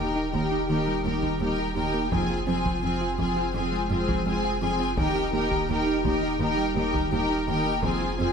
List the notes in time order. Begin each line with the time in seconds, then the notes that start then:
Already playing: D#1 D#4 G4
0.00 A#4 G5
0.16 D#4
0.33 D#2 D#3 D#4 G4 A#4 G5, taiko
0.52 D#4
0.69 D#2 D#3 D#4 G4 A#4 G5
0.87 G3
1.05 D#2 G3 D#4 G4 A#4 G5
1.23 D#3, taiko
1.40 D#2 G3 D#4 G4 A#4 G5
1.59 D#4
1.76 D#2 D#3 D#4 G4 A#4 G5
1.94 A#3
2.11 F1 F2 F3 C4 F4 G#4 G#5, taiko
2.30 F4
2.47 F2 C4 F4 G#4 G#5
2.65 F3, taiko
2.83 F2 C4 F4 G#4 G#5
3.01 F4
3.18 F2 F3 C4 F4 G#4 G#5, taiko
3.37 F4
3.54 F2 F3 C4 F4 G#4 G#5
3.72 G#3
3.90 F2 G#3 C4 F4 G#4 G#5
4.08 F3, taiko
4.26 F2 G#3 C4 F4 G#4 G#5
4.44 F4
4.62 F2 F3 C4 F4 G#4 G#5
4.80 C4
4.97 D#1 D#2 D#3 D#4 G4 A#4 G5, taiko
5.16 D#4
5.33 D#2 A#3 D#4 G4 A#4 G5
5.51 D#3, taiko
5.69 D#2 D#4 G4 A#4 G5
5.87 D#4
6.05 D#2 D#3 D#4 G4 A#4 G5, taiko
6.23 D#4
6.40 D#2 D#3 D#4 G4 A#4 G5
6.58 G3
6.76 D#2 G3 D#4 G4 A#4 G5
6.93 D#3, taiko
7.12 D#2 G3 D#4 G4 A#4 G5
7.30 D#4
7.48 D#2 D#3 D#4 G4 A#4 G5
7.66 A#3
7.83 F1 F2 F3 C4 F4 G#4 G#5, taiko
8.01 F4
8.19 F2 C4 F4 G#4 G#5